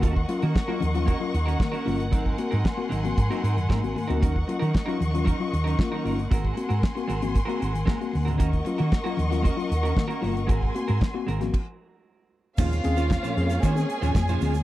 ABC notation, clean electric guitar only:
X:1
M:4/4
L:1/16
Q:1/4=115
K:Ebdor
V:1 name="Clean electric guitar"
[B,DGB]2 z [B,DGB] z [B,DGB] z2 [B,DGB] z2 [B,DGB] z [B,DGB] [B,DGB] z | [G,CEB]2 z [G,CEB] z2 [G,CEB] z2 [G,CEB] [G,CEB] z [G,CEB] z2 [G,CEB] | [G,DEB] z2 [G,DEB] z [G,DEB] z2 [G,DEB] z2 [G,DEB] z [G,DEB] [G,DEB] z | [A,CGB]2 z [A,CGB] z2 [A,CGB] z2 [A,CGB] [A,CGB] z [A,CGB] z2 [A,CGB] |
[B,DGB] z2 [B,DGB] z [B,DGB] z2 [B,DGB] z2 [B,DGB] z [B,DGB] [B,DGB] z | [A,CGB]2 z [A,CGB] z2 [A,CGB] z8 z | [A,DFc] z2 [A,DFc] z [A,DFc] z2 [A,DFc] z2 [A,DFc] z [A,DFc] [A,DFc] z |]